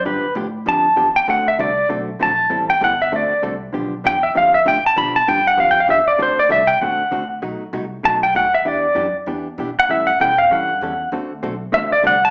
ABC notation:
X:1
M:4/4
L:1/8
Q:"Swing" 1/4=195
K:Dmix
V:1 name="Pedal steel guitar"
B2 z2 a3 g | f e d2 z2 a2- | a g f e d2 z2 | z2 g e =f e g a |
b a g f (3=f g f e d | c d e g f3 z | z4 a g f e | d3 z4 f |
e f g =f ^f4 | z4 e d f a |]
V:2 name="Hollow-body jazz guitar"
[D,=F,B,DG] z [D,F,B,DG] z [D,F,B,DG] z [D,F,B,DG] z | [D,A,CFA] z [D,A,CFA] z [D,A,CFA] z [D,A,CFA] z | [E,G,CEA] z [E,G,CEA] z [D,A,CFA] z [D,A,CFA] z | [D,=F,B,DG] z [D,F,B,DG] z [D,F,B,DG] z [D,F,B,DG] z |
[D,=F,B,DG] z [D,F,B,DG] z [D,F,B,DG] z [D,F,B,DG] z | [D,A,CFA] z [D,A,CFA] z [D,A,CFA] z [D,A,CFA] z | [B,,F,A,^DF] z [B,,F,A,DF] z [B,,F,A,DF] z [B,,F,A,DF] z | [E,B,DG] z [E,B,DG] z [E,B,DG] z [E,B,DG] z |
[E,G,^CEA] z [E,G,CEA] z [E,G,CEA] z [E,G,CEA] z | [D,A,CFA] z [D,A,CFA] z [D,A,CFA] z [D,A,CFA] z |]
V:3 name="Upright bass" clef=bass
G,, z A,,2 =F,,2 E,,2 | D,,2 C,,2 B,,,2 _B,,,2 | A,,,2 G,,,2 D,, z C,,2 | B,,,2 E,,2 =F,,2 A,, z |
B,,2 G,,2 =F,,2 E,, z | D,,2 C,,2 A,,, z D,,2 | B,,, z C,,2 B,,,2 ^D,,2 | E,,2 F,, z E,,2 B,, z |
A,,2 B,,2 G,,2 E,,2 | D,,2 B,,,2 A,,, z C,,2 |]